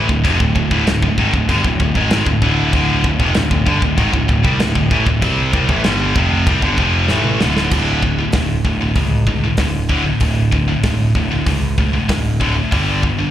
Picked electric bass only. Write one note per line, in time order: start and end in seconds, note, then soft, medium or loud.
0.09 0.24 D1 medium
0.25 0.39 F1 medium
0.40 0.54 D1 medium
0.55 0.70 D1 medium
0.70 0.86 D1 medium
0.87 1.01 D1 medium
1.02 1.17 D1 medium
1.18 1.33 G#1 medium
1.33 1.48 D1 medium
1.49 1.64 G1 medium
1.65 1.79 D1 medium
1.80 1.94 D1 medium
1.95 2.24 G#1 medium
2.26 2.41 D1 medium
2.42 2.71 D1 loud
2.73 3.02 D1 medium
3.04 3.19 D1 medium
3.20 3.35 F1 loud
3.35 3.50 D1 medium
3.51 3.66 D1 medium
3.67 3.81 G1 medium
3.82 3.97 D1 medium
3.97 4.12 G#1 medium
4.14 4.28 D1 medium
4.29 4.43 D1 medium
4.44 4.59 C2 medium
4.59 4.74 D1 medium
4.75 4.90 D1 medium
4.91 5.06 A1 loud
5.06 5.21 D1 medium
5.23 5.51 C2 medium
5.54 5.68 C2 medium
5.69 5.84 A1 loud
5.84 6.13 G1 medium
6.16 6.45 F1 medium
6.47 6.61 C2 medium
6.63 6.77 G1 medium
6.78 7.07 F1 loud
7.09 7.38 A1 loud
7.41 7.69 D1 loud
7.71 8.22 D1 medium
8.33 8.59 D1 medium
8.64 8.90 D1 medium
8.95 9.47 C#2 medium
9.58 10.09 D1 medium
10.21 10.72 D1 medium
10.83 11.09 D1 medium
11.15 11.40 D1 medium
11.46 11.97 C#2 medium
12.10 12.60 D1 medium
12.72 13.23 G1 medium